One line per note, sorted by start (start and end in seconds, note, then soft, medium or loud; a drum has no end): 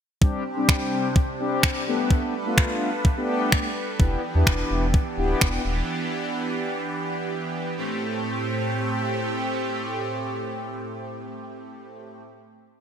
0.21 1.85 C3 medium
0.21 0.43 G3 medium
0.21 0.44 C4 medium
0.21 1.85 C4 medium
0.21 0.44 D4 medium
0.21 1.85 D4 medium
0.21 0.44 G4 medium
0.21 1.85 G4 medium
0.21 kick loud
0.57 1.08 G3 medium
0.57 1.08 C4 medium
0.57 1.08 D4 medium
0.57 1.08 G4 medium
0.69 finger snap loud
0.69 kick loud
1.16 kick loud
1.39 1.84 G3 medium
1.39 1.84 C4 medium
1.39 1.84 D4 medium
1.39 1.84 G4 medium
1.63 finger snap loud
1.63 kick loud
1.87 3.98 G3 medium
1.87 2.34 A3 medium
1.87 2.34 B3 medium
1.87 2.34 D4 medium
1.87 3.98 D4 medium
1.87 2.34 G4 loud
1.87 3.98 A4 medium
1.87 3.98 B4 medium
2.11 kick loud
2.46 2.90 A3 medium
2.46 2.90 B3 medium
2.46 2.90 D4 medium
2.46 2.90 F4 medium
2.58 finger snap loud
2.58 kick loud
3.05 kick loud
3.16 3.68 A3 medium
3.16 3.68 B3 medium
3.16 3.68 D4 medium
3.16 3.68 G4 loud
3.52 finger snap loud
3.52 kick loud
3.99 4.17 E1 medium
3.99 7.74 E3 medium
3.99 4.21 B3 medium
3.99 7.74 B3 medium
3.99 4.21 D4 medium
3.99 7.74 D4 medium
3.99 4.22 E4 medium
3.99 4.22 G4 medium
3.99 7.74 G4 medium
3.99 kick loud
4.35 4.44 E2 loud
4.35 4.86 B3 medium
4.35 4.86 D4 medium
4.35 4.86 E4 medium
4.35 4.87 G4 medium
4.47 4.64 E1 medium
4.47 finger snap loud
4.47 kick loud
4.71 4.96 E1 loud
4.94 kick loud
5.18 5.35 D1 medium
5.18 5.62 B3 medium
5.18 5.62 D4 medium
5.18 5.62 E4 medium
5.18 5.62 G4 loud
5.41 5.59 E1 medium
5.41 finger snap loud
5.41 kick loud
5.65 5.82 D#1 loud
7.77 12.20 A2 medium
7.77 12.21 A3 medium
7.77 12.21 C4 medium
7.77 12.21 G4 medium